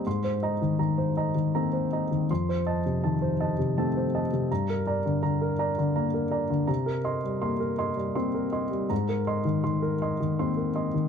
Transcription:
<<
  \new Staff \with { instrumentName = "Grand piano" } { \time 3/4 \key aes \lydian \tempo 4 = 81 c'''16 c''16 <ees'' bes''>16 ees16 bes''16 c''16 <ees'' bes''>16 ees16 bes''16 c''16 <ees'' bes''>16 ees16 | c'''16 c''16 <ees'' a''>16 c16 a''16 c''16 <ees'' a''>16 c16 a''16 c''16 <ees'' a''>16 c16 | bes''16 bes'16 <d'' bes''>16 d16 bes''16 bes'16 <d'' bes''>16 d16 bes''16 bes'16 <d'' bes''>16 d16 | bes''16 bes'16 <ees'' c'''>16 g16 c'''16 bes'16 <ees'' c'''>16 g16 c'''16 bes'16 <ees'' c'''>16 g16 |
bes''16 bes'16 <ees'' c'''>16 ees16 c'''16 bes'16 <ees'' c'''>16 ees16 c'''16 bes'16 <ees'' c'''>16 ees16 | }
  \new Staff \with { instrumentName = "Grand piano" } { \time 3/4 \key aes \lydian aes,4 ees4 <bes c'>4 | f,4 ees4 <a c'>4 | g,4 d4 bes4 | c4 bes4 <bes c'>4 |
aes,4 ees4 <bes c'>4 | }
>>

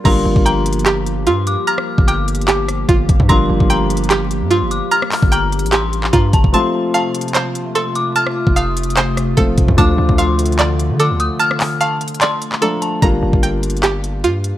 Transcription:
<<
  \new Staff \with { instrumentName = "Synth bell" } { \time 4/4 \key g \minor \tempo 4 = 148 c'''4 bes''4 r4 c'''8 d'''8 | f'''4 d'''2 r4 | c'''4 bes''4 r4 c'''8 d'''8 | f'''4 bes''4 c'''4 bes''8 a''8 |
c'''4 a''4 r4 c'''8 d'''8 | f'''4 ees'''2 r4 | d'''4 c'''4 r4 d'''8 ees'''8 | f'''4 a''4 c'''4 bes''8 a''8 |
r1 | }
  \new Staff \with { instrumentName = "Synth pluck" } { \time 4/4 \key g \minor bes''4 g''4 g'4 f'4 | bes''4 g''4 g'4 f'4 | bes''4 g''4 g'4 f'4 | bes''4 g''4 g'4 f'4 |
a''4 f''4 c''4 a'4 | a''4 f''4 c''4 a'4 | a''4 f''4 d''4 a'4 | a''4 f''4 d''4 a'4 |
bes''4 g''4 g'4 f'4 | }
  \new Staff \with { instrumentName = "Grand piano" } { \time 4/4 \key g \minor <g bes d' f'>1~ | <g bes d' f'>1 | <g bes d' f'>1~ | <g bes d' f'>1 |
<f a c' f'>1~ | <f a c' f'>2. <f a c' f'>4 | <f a d' f'>1~ | <f a d' f'>2. <f a d' f'>4 |
<g bes d' f'>1 | }
  \new Staff \with { instrumentName = "Ambient pad" } { \time 4/4 \key g \minor << { <bes g'>1~ | <bes g'>1~ | <bes g'>1~ | <bes g'>1 |
<a f'>1~ | <a f'>1~ | <a f'>1~ | <a f'>1 |
r1 | } \\ { f1~ | f1~ | f1~ | f1 |
c1~ | c1 | d1~ | d1 |
r1 | } >> }
  \new Staff \with { instrumentName = "808-style bass" } { \clef bass \time 4/4 \key g \minor g,,8 g,,16 g,,2~ g,,16 g,8. r16 | r8. g,,2~ g,,16 g,,8 g,,16 g,16 | g,,8 g,,16 g,,2 g,8 g,,8 r16 | r8. g,,4 a,,4~ a,,16 g,8 g,,16 f,,16 |
r1 | r8. f,,2~ f,,16 f,,8 f,,16 f,16 | d,8 d,16 d,2 d8 d,8 r16 | r1 |
g,,8 g,,16 g,,2~ g,,16 g,8. r16 | }
  \new DrumStaff \with { instrumentName = "Drums" } \drummode { \time 4/4 <cymc hh bd>8. bd16 \tuplet 3/2 { hh16 r16 r16 hh16 hh16 hh16 } <hc hh>8 hh8 hh8 hh8 | hh16 ss8 bd16 \tuplet 3/2 { hh16 r16 r16 hh16 hh16 hh16 } <hc hh>8 <hh ss>8 <hh bd>8 <hh bd>16 bd16 | <hh bd>8. bd16 \tuplet 3/2 { hh16 r16 r16 hh16 hh16 hh16 } <hc hh>8 hh8 hh8 hh8 | hh16 ss16 <hc hho>16 bd16 \tuplet 3/2 { hh16 r16 r16 hh16 hh16 hh16 } <hc hh>8 hh16 hc16 <hh bd>8 <hh bd>16 bd16 |
hh4 \tuplet 3/2 { hh16 r16 r16 hh16 hh16 hh16 } <hc hh>8 hh8 hh8 hh8 | hh16 ss8 bd16 \tuplet 3/2 { hh16 r16 r16 hh16 hh16 hh16 } <hc hh>8 <hh ss>8 <hh bd>8 <hh bd>16 bd16 | <hh bd>8. bd16 \tuplet 3/2 { hh16 r16 r16 hh16 hh16 hh16 } <hc hh>8 hh8 hh8 hh8 | hh16 ss16 <hc hho>8 \tuplet 3/2 { hh16 r16 r16 hh16 hh16 hh16 } <hc hh>8 hh16 hc16 hh8 hh8 |
<hh bd>8. bd16 \tuplet 3/2 { hh16 r16 r16 hh16 hh16 hh16 } <hc hh>8 hh8 hh8 hh8 | }
>>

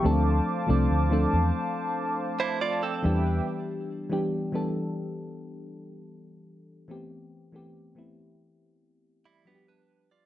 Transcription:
<<
  \new Staff \with { instrumentName = "Analog synth pad" } { \time 4/4 \key a \minor \tempo 4 = 70 << { d'''1 | r1 | r1 | } \\ { <c'' f'' a''>2.~ <c'' f'' a''>8 <b' e'' g''>8 | r1 | r1 | } >> }
  \new Staff \with { instrumentName = "Clean electric guitar" } { \time 4/4 \key a \minor r2 r8. <e' c''>16 <f' d''>16 <c' a'>8 r16 | r1 | r2 r8. <g e'>16 <b g'>16 <d' b'>8 <f' d''>16 | }
  \new Staff \with { instrumentName = "FM electric piano" } { \time 4/4 \key a \minor <f a c' d' a'>8 r16 <f a c' d' a'>8 <f a c' d' a'>4. r8. <e g b d' g'>8~ | <e g b d' g'>8 r16 <e g b d' g'>8 <e g b d' a'>4. r4 r16 | <e a b c' g'>8 r16 <e a b c' g'>8 <e a b c' e'>4. r16 <f g b d' fis' g'>8. r16 | }
  \new Staff \with { instrumentName = "Fingered electric bass" } { \clef bass \time 4/4 \key a \minor d,8 r16 c,16 d,8 e,16 r4. r16 e,8 | r1 | r1 | }
>>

